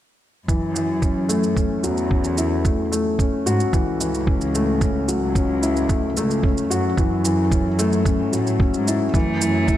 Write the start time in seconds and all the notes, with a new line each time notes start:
0.48 F#2 E3, kick, shaker
0.76 E3, shaker
1.02 C#4, kick, shaker
1.29 A3, shaker
1.43 shaker
1.56 C#4, kick, shaker
1.83 E2 F#3, shaker
1.97 shaker
2.11 C#4, kick
2.24 shaker
2.38 E4, shaker
2.65 A3, kick, shaker
2.92 A3, shaker
3.19 C#4, kick, shaker
3.46 G#2 F#4, shaker
3.60 shaker
3.73 C#2 E3, kick, shaker
4.00 E3, shaker
4.14 shaker
4.27 C#4, kick
4.41 shaker
4.55 A3, shaker
4.81 C#4, kick, shaker
5.08 F#3, shaker
5.22 C#2
5.35 C#4, kick, shaker
5.62 E4, shaker
5.77 shaker
5.89 A3, kick, shaker
6.17 C#2 A3, shaker
6.31 shaker
6.43 C#4, kick
6.57 shaker
6.70 F#2 F#4, shaker
6.97 F#2 E3, kick, shaker
7.24 E3, shaker
7.51 C#4, kick, shaker
7.79 A3, shaker
7.93 shaker
8.05 C#4, kick, shaker
8.33 A2 F#3, shaker
8.47 shaker
8.60 C#4, kick
8.74 G#2, shaker
8.87 E4, shaker
9.14 F#2 E3 A3, kick, shaker
9.41 E3, shaker
9.68 E4, kick, shaker